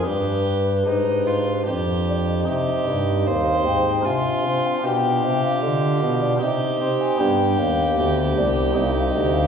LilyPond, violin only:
\new Staff \with { instrumentName = "Violin" } { \time 3/4 \key c \minor \tempo 4 = 76 g'4 ees'8 f'8 g'4 | g'4 c''4 f'4 | g'2 g'4~ | g'2. | }